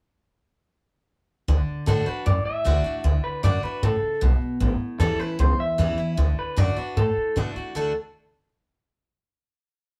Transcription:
1.48 upright bass D2, steel-string acoustic guitar D3
1.68 muted upright bass stroke
1.86 upright bass A2, steel-string acoustic guitar D3 A3 D4 F#4, clean electric guitar A4
2.06 steel-string acoustic guitar D4 F#4, clean electric guitar B4, muted upright bass stroke
2.26 upright bass F#2, steel-string acoustic guitar A2, clean electric guitar D5
2.46 clean electric guitar E5, muted upright bass stroke
2.64 upright bass D2, steel-string acoustic guitar D3 A3 D4 F#4
2.84 steel-string acoustic guitar D4 F#4
3.04 upright bass D2, steel-string acoustic guitar D3
3.24 clean electric guitar B4, muted upright bass stroke
3.43 upright bass F#2, steel-string acoustic guitar D3 A3 D4 F#4, clean electric guitar D5
3.63 steel-string acoustic guitar D4 F#4, clean electric guitar B4, muted upright bass stroke
3.83 upright bass A2, steel-string acoustic guitar C#3, clean electric guitar A4
4.03 muted upright bass stroke
4.21 upright bass B1, steel-string acoustic guitar B2
4.41 muted upright bass stroke
4.60 upright bass A1, steel-string acoustic guitar A2
4.80 muted upright bass stroke
4.99 upright bass E2, steel-string acoustic guitar E3 G3 C#4 E4, clean electric guitar A4
5.19 steel-string acoustic guitar C#4 E4, clean electric guitar B4, muted upright bass stroke
5.39 upright bass C#2, steel-string acoustic guitar E2, clean electric guitar C5
5.59 clean electric guitar E5, muted upright bass stroke
5.78 upright bass E2, steel-string acoustic guitar E3 G3 C#4 E4
5.98 steel-string acoustic guitar C#4 E4, muted upright bass stroke
6.17 upright bass D2, steel-string acoustic guitar D3
6.38 clean electric guitar B4, muted upright bass stroke
6.56 upright bass F#2, steel-string acoustic guitar D3 A3 D4 F#4, clean electric guitar D5
6.76 steel-string acoustic guitar D4 F#4, clean electric guitar B4, muted upright bass stroke
6.97 upright bass A2, steel-string acoustic guitar A2, clean electric guitar A4
7.17 muted upright bass stroke
7.36 upright bass B2, steel-string acoustic guitar D3 A3 D4 F#4
7.56 steel-string acoustic guitar D4 F#4, muted upright bass stroke
7.75 upright bass D2, steel-string acoustic guitar D3 A3 D4 F#4, clean electric guitar A4

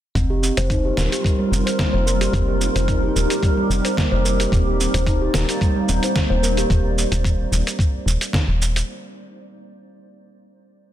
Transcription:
0.14 fm bass F1, ambient pad G3 D#4 F4 A#4, steel tongue drum C4, kick, closed hi-hat, cabasa
0.30 steel tongue drum G4
0.43 steel tongue drum C4, cabasa
0.57 fm bass F1, steel tongue drum C5, closed hi-hat, cabasa
0.70 steel tongue drum D#4, kick, closed hi-hat, cabasa
0.85 steel tongue drum G4
0.97 fm bass D#1, snare, cabasa
1.12 steel tongue drum G4, closed hi-hat, cabasa
1.24 steel tongue drum G3, kick, closed hi-hat, cabasa
1.39 steel tongue drum G3
1.52 fm bass F1, steel tongue drum C4, cabasa
1.66 steel tongue drum C5, closed hi-hat, cabasa
1.78 steel tongue drum A#3, kick, snare, closed hi-hat, cabasa
1.93 fm bass F1, steel tongue drum C5
2.06 steel tongue drum A#4, cabasa
2.21 steel tongue drum G4, closed hi-hat, cabasa
2.33 fm bass F1, steel tongue drum C4, ambient pad G4, kick, closed hi-hat, cabasa
2.48 steel tongue drum G4
2.61 steel tongue drum C4, cabasa
2.76 fm bass F1, steel tongue drum C5, closed hi-hat, cabasa
2.88 steel tongue drum D#4, kick, closed hi-hat, cabasa
3.03 steel tongue drum G4
3.16 fm bass D#1, steel tongue drum A#4, cabasa
3.30 steel tongue drum G4, closed hi-hat, cabasa
3.43 steel tongue drum G3, kick, closed hi-hat, cabasa
3.57 steel tongue drum G3
3.70 fm bass F1, steel tongue drum C4, cabasa
3.85 steel tongue drum C5, closed hi-hat, cabasa
3.97 steel tongue drum A#3, kick, snare, closed hi-hat, cabasa
4.12 fm bass F1, steel tongue drum C5
4.25 steel tongue drum A#4, cabasa
4.40 steel tongue drum G4, closed hi-hat, cabasa
4.51 fm bass D#1, ambient pad A#3 D#4 C5 D5, steel tongue drum C4, kick, closed hi-hat, cabasa
4.67 steel tongue drum G4
4.80 steel tongue drum C4, cabasa
4.94 fm bass D#1, steel tongue drum C5, closed hi-hat, cabasa
5.07 steel tongue drum D#4, kick, closed hi-hat, cabasa
5.22 steel tongue drum G4
5.34 fm bass D#1, steel tongue drum A#4, snare, cabasa
5.49 steel tongue drum G4, closed hi-hat, cabasa
5.61 steel tongue drum G3, kick, closed hi-hat, cabasa
5.76 steel tongue drum G3
5.89 fm bass D#1, steel tongue drum C4, cabasa
6.03 steel tongue drum C5, closed hi-hat, cabasa
6.16 steel tongue drum A#3, kick, snare, closed hi-hat, cabasa
6.30 fm bass D#1, steel tongue drum C5
6.43 steel tongue drum A#4, cabasa
6.57 steel tongue drum G4, closed hi-hat, cabasa
6.70 fm bass D#1, kick, closed hi-hat, cabasa
6.98 cabasa
7.12 fm bass D#1, closed hi-hat, cabasa
7.24 kick, closed hi-hat, cabasa
7.52 fm bass D#1, cabasa
7.67 closed hi-hat, cabasa
7.79 kick, closed hi-hat, cabasa
8.06 fm bass D#1, cabasa
8.21 closed hi-hat, cabasa
8.33 kick, snare, closed hi-hat, cabasa
8.48 fm bass D#1
8.62 cabasa
8.76 closed hi-hat, cabasa

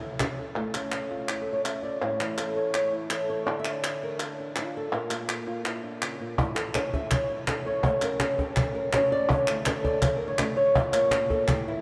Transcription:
Already playing: nylon-string guitar A2 E4 A4
0.03 cajon slap
0.20 nylon-string guitar C#4, cajon slap, clap
0.39 nylon-string guitar A4
0.56 nylon-string guitar A3, clap
0.74 nylon-string guitar C#4, clap
0.92 nylon-string guitar A4, clap
1.11 nylon-string guitar F4
1.29 nylon-string guitar E4, clap
1.41 nylon-string guitar A4
1.53 nylon-string guitar C#5
1.65 nylon-string guitar C#4 E5, clap
1.83 nylon-string guitar D5
2.01 nylon-string guitar A2 C#5, clap
2.20 nylon-string guitar E3 E4, clap
2.38 nylon-string guitar A4, clap
2.56 nylon-string guitar C#5
2.74 nylon-string guitar C#5, clap
2.93 nylon-string guitar E4
3.10 nylon-string guitar E3 A4, clap
3.30 nylon-string guitar C#5
3.46 nylon-string guitar D3 D5, clap
3.59 nylon-string guitar E5
3.65 nylon-string guitar D4, clap
3.73 nylon-string guitar D5
3.84 nylon-string guitar C#5, clap
4.03 nylon-string guitar A#4
4.20 nylon-string guitar A4, clap
4.40 nylon-string guitar D4
4.56 nylon-string guitar D4 F4, clap
4.77 nylon-string guitar A4
4.92 nylon-string guitar A#2 A#4, clap
5.10 nylon-string guitar A#3, clap
5.29 clap
5.47 nylon-string guitar F4
5.64 nylon-string guitar E4, clap
5.83 nylon-string guitar D4
6.02 nylon-string guitar C#3, clap
6.20 nylon-string guitar A#2
6.38 nylon-string guitar A2 E4, cajon bass, clap
6.55 nylon-string guitar E3 A4, clap
6.74 nylon-string guitar C#5, cajon slap, clap
6.94 nylon-string guitar E5, cajon bass, cajon slap
7.11 nylon-string guitar C#5, cajon bass, clap
7.29 nylon-string guitar E4, cajon slap
7.48 nylon-string guitar E3 A4, cajon slap, clap
7.66 nylon-string guitar C#5
7.84 nylon-string guitar A3 C#5, cajon bass, clap
8.02 nylon-string guitar C#4 A#4, cajon slap, clap
8.20 nylon-string guitar A4, cajon slap, clap
8.39 nylon-string guitar G4, cajon bass, cajon slap
8.56 nylon-string guitar A4, cajon bass, clap
8.75 nylon-string guitar A#4, cajon slap
8.93 nylon-string guitar C#4 C#5, cajon slap, clap
9.12 nylon-string guitar D5
9.29 nylon-string guitar D3 C#5, cajon bass, clap
9.47 nylon-string guitar A3 E4, clap
9.66 nylon-string guitar A4, cajon slap, clap
9.84 nylon-string guitar D5, cajon bass, cajon slap
10.02 nylon-string guitar C#5, cajon bass, clap
10.16 nylon-string guitar A#4
10.21 nylon-string guitar D4, cajon slap
10.28 nylon-string guitar C#5
10.38 nylon-string guitar A3 D5, cajon slap, clap
10.57 nylon-string guitar C#5
10.75 nylon-string guitar A#2 D5, cajon bass, clap
10.92 nylon-string guitar A#3 C#5, cajon slap, clap
11.11 nylon-string guitar A#4, cajon slap, clap
11.30 nylon-string guitar A4, cajon bass, cajon slap
11.48 nylon-string guitar A2 G4, cajon bass, clap
11.67 nylon-string guitar E3 E4, cajon slap

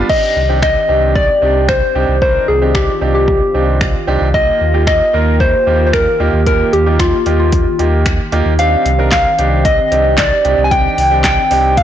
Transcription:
0.09 analog synth pad D#3 C4 G4, grand piano C4 D4 D#4 G4, soft synth lead D#5, kick, crash
0.36 sub bass C2
0.49 grand piano C4 D4 D#4 G4
0.62 soft synth lead D#5, finger snap, kick
0.89 sub bass C2, grand piano C4 D4 D#4 G4
1.15 soft synth lead D5, kick
1.42 sub bass C2, grand piano C4 D4 D#4 G4
1.69 soft synth lead C5, finger snap, kick
1.95 sub bass C2, grand piano C4 D4 D#4 G4
2.08 sub bass C2
2.22 grand piano C4 D4 D#4 A#4, analog synth pad F4, soft synth lead C5, kick
2.48 sub bass C2, soft synth lead G#4
2.62 grand piano C4 D4 D#4 G4
2.75 soft synth lead G4, finger snap, kick
3.01 sub bass C2, grand piano C4 D4 D#4 G4
3.15 soft synth lead G4
3.28 kick
3.54 sub bass C2, grand piano C4 D4 D#4 G4
3.81 finger snap, kick
4.07 sub bass C2, grand piano C4 D4 D#4 G4
4.21 sub bass C2
4.34 grand piano A#3 F4 G4, analog synth pad A#3 G4, soft synth lead D#5, kick
4.61 sub bass D#2
4.74 grand piano A#3 D#4 F4 G4
4.87 soft synth lead D#5, finger snap, kick
5.13 sub bass D#2, grand piano A#3 D#4 F4 A#4
5.40 soft synth lead C5, kick
5.67 sub bass D#2, grand piano A#3 D#4 F4 G4
5.87 soft synth lead C5
5.93 soft synth lead A#4, finger snap, kick
6.20 sub bass D#2, grand piano A#3 D#4 F4 G4
6.33 sub bass D#2
6.46 grand piano A#3 D#4 F4 G4, soft synth lead A#4, kick, closed hi-hat
6.73 sub bass D#2, soft synth lead G4, closed hi-hat
6.86 grand piano A#3 D#4 F4 G4
6.99 soft synth lead F4, finger snap, kick, closed hi-hat
7.26 sub bass D#2, grand piano A#3 D#4 F4 G4, closed hi-hat
7.40 soft synth lead F4
7.52 kick, closed hi-hat
7.79 sub bass D#2, grand piano A#3 D#4 F4 G4, closed hi-hat
8.06 finger snap, kick, closed hi-hat
8.32 sub bass D#2, grand piano A#3 D#4 F4 G4, closed hi-hat
8.46 sub bass D#2
8.59 grand piano C4 D4 D#4 G4, analog synth pad C4, soft synth lead F5, closed hi-hat
8.85 sub bass C2, closed hi-hat
8.99 grand piano C4 D4 D#4 A#4
9.12 soft synth lead F5, kick, snare, clap, closed hi-hat
9.38 sub bass C2, grand piano C4 D4 D#4 G4, closed hi-hat
9.65 soft synth lead D#5, kick, closed hi-hat
9.91 sub bass C2, grand piano C4 D4 D#4 G4, closed hi-hat
10.18 soft synth lead D5, kick, snare, clap, closed hi-hat
10.44 sub bass C2, grand piano C4 D4 D#4 G4, closed hi-hat
10.58 sub bass C2
10.64 soft synth lead G#5
10.71 grand piano C4 D4 D#4 G4, soft synth lead G5, kick, closed hi-hat
10.98 sub bass C2, open hi-hat
11.11 grand piano C4 D4 D#4 G4
11.24 soft synth lead G5, kick, snare, clap, closed hi-hat
11.51 sub bass C2, grand piano C4 D4 D#4 G4, open hi-hat
11.77 soft synth lead F5, kick, closed hi-hat

